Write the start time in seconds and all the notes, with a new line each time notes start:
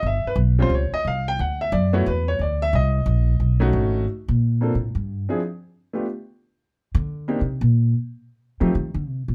0.03 G1 E5
0.25 B4, muted upright bass stroke
0.36 B1
0.59 G3 C4 C#4 F4 C5
0.70 C#2
0.74 C#5
0.92 D#5, muted upright bass stroke
1.05 C2 F5
1.28 G5
1.39 D2 F#5
1.61 E5
1.72 F#2 D5
1.93 A3 B3 E4 F#4 C#5
2.06 E2 B4
2.28 C#5
2.39 D2 D5
2.62 E5
2.73 C2 D#5
3.06 A#1
3.40 B1
3.60 A3 C#4 D#4 F#4
3.73 G#1
4.28 A#2
4.61 A#3 C4 D4 F4 A4
4.75 A2
4.95 G2
5.29 F3 C4 D4 E4 G#4
5.93 A3 B3 D4 F4 G4
6.95 D3
7.28 A#3 C4 D4 D#4 G4
7.41 C3
7.61 A#2
8.60 F3 A3 C4 D#4 F4 G4
8.75 D#3
8.94 D3
9.08 C3
9.28 A#2